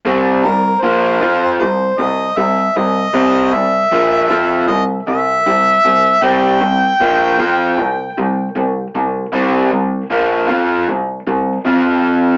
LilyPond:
<<
  \new Staff \with { instrumentName = "Harmonica" } { \time 4/4 \key c \mixolydian \tempo 4 = 78 r8 bes'8 c''4 c''8 ees''8 e''8 ees''8~ | ees''8 e''4. ees''8 e''4. | g''2. r4 | r1 | }
  \new Staff \with { instrumentName = "Overdriven electric guitar" } { \clef bass \time 4/4 \key c \mixolydian <c g c'>8 <c g>8 <bes, f bes>8 <f c' f'>8 <c g>8 <c g>8 <c g>8 <c g>8 | <c g c'>8 <c g>8 <bes, f bes>8 <f c' f'>8 <c g>8 <c g>8 <c g>8 <c g>8 | <c g c'>8 <c g>8 <bes, f bes>8 <f c' f'>8 <c g>8 <c g>8 <c g>8 <c g>8 | <c g c'>8 <c g>8 <bes, f bes>8 <f c' f'>8 <c g>8 <c g>8 <f c' f'>4 | }
>>